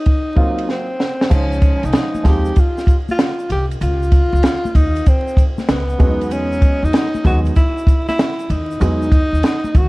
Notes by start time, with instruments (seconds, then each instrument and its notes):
Already playing: tenor saxophone D#4
0.06 kick, ride
0.36 upright piano F#3 A#3 C4 F4, kick
0.58 ride
0.69 tenor saxophone C4, snare
1.00 snare
1.21 snare
1.29 upright bass C#2, upright piano F3 G#3 D#4 C5, kick, crash, shaker
1.34 tenor saxophone C#4
1.52 shaker
1.62 kick, ride, shaker
1.83 upright bass C2, tenor saxophone D#4, ride, shaker
1.93 snare, hi-hat pedal, ride, shaker
2.15 high conga, shaker
2.24 upright bass D#2, upright piano F3 G#3 C4 D#4, tenor saxophone G4, kick, snare, ride, high conga, low conga, shaker
2.45 shaker
2.56 tenor saxophone F4, kick, ride, shaker
2.78 snare, shaker
2.87 kick, ride, shaker
3.09 tenor saxophone F4, high conga, shaker
3.19 snare, hi-hat pedal, ride, shaker
3.39 shaker
3.50 upright bass C2, tenor saxophone G4, ride, low conga, shaker
3.71 ride, shaker
3.81 upright bass C#2, tenor saxophone F4, ride, shaker
4.03 shaker
4.12 kick, ride, shaker
4.33 upright bass C#2, shaker
4.43 snare, hi-hat pedal, ride, shaker
4.65 high conga, shaker
4.75 upright bass D#2, tenor saxophone D#4, kick, ride, high conga, low conga, shaker
4.96 ride, shaker
5.06 tenor saxophone C4, kick, ride, shaker
5.28 shaker
5.37 kick, ride, shaker
5.58 snare, high conga, shaker
5.69 upright bass C#2, tenor saxophone B3, snare, hi-hat pedal, ride, shaker
5.89 shaker
5.99 upright bass E2, upright piano F#3 G#3 B3 C#4, kick, ride, low conga, shaker
6.07 upright piano D#4
6.21 ride, shaker
6.31 tenor saxophone C#4, ride, shaker
6.52 shaker
6.62 kick, ride, shaker
6.83 upright bass E2, tenor saxophone D#4, shaker
6.93 snare, hi-hat pedal, ride, shaker
7.15 high conga, shaker
7.24 upright bass D#2, upright piano F#3 G#3 B3 D#4, tenor saxophone F#4, kick, snare, ride, high conga, low conga, shaker
7.46 ride, shaker
7.56 tenor saxophone E4, kick, ride, shaker
7.78 shaker
7.87 kick, ride, shaker
8.08 tenor saxophone E4, snare, ride, high conga, shaker
8.19 snare, hi-hat pedal, ride, shaker
8.39 shaker
8.50 upright bass D#2, tenor saxophone D#4, ride, low conga, shaker
8.71 shaker
8.80 upright bass E2, upright piano F#3 G#3 B3 D#4, tenor saxophone D#4, ride, shaker
9.02 shaker
9.12 kick, ride, shaker
9.33 upright bass D#2, shaker
9.43 snare, hi-hat pedal, ride, shaker
9.64 high conga, shaker
9.75 upright bass D#2, tenor saxophone F#4, kick, ride, high conga, low conga, shaker